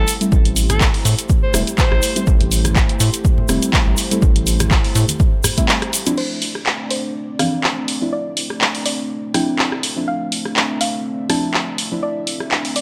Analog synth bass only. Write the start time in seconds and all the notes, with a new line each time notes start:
0.32 A1
1.05 A2
1.54 E1
1.92 A1
2.27 A1
3.00 A2
3.49 E1
3.87 A1
4.22 A1
4.95 A2